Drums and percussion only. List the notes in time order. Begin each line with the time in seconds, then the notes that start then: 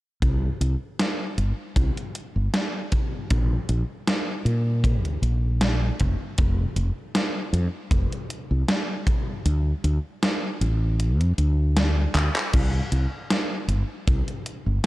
0.22 kick, closed hi-hat
0.61 closed hi-hat
0.99 snare, closed hi-hat
1.38 closed hi-hat
1.76 kick, closed hi-hat
1.97 closed hi-hat
2.15 closed hi-hat
2.54 snare, closed hi-hat
2.92 kick, closed hi-hat
3.30 kick, closed hi-hat
3.69 closed hi-hat
4.07 snare, closed hi-hat
4.46 closed hi-hat
4.84 kick, closed hi-hat
5.05 closed hi-hat
5.23 closed hi-hat
5.61 snare, closed hi-hat
6.00 kick, closed hi-hat
6.38 kick, closed hi-hat
6.76 closed hi-hat
7.15 snare, closed hi-hat
7.54 closed hi-hat
7.91 kick, closed hi-hat
8.12 closed hi-hat
8.30 closed hi-hat
8.68 snare, closed hi-hat
9.07 kick, closed hi-hat
9.46 closed hi-hat
9.84 closed hi-hat
10.23 snare, closed hi-hat
10.62 closed hi-hat
11.00 closed hi-hat
11.21 closed hi-hat
11.38 closed hi-hat
11.77 snare, closed hi-hat
12.15 clap, closed hi-hat
12.36 clap
12.53 kick, closed hi-hat, crash
12.92 closed hi-hat
13.30 snare, closed hi-hat
13.69 closed hi-hat
14.08 kick, closed hi-hat
14.28 closed hi-hat
14.46 closed hi-hat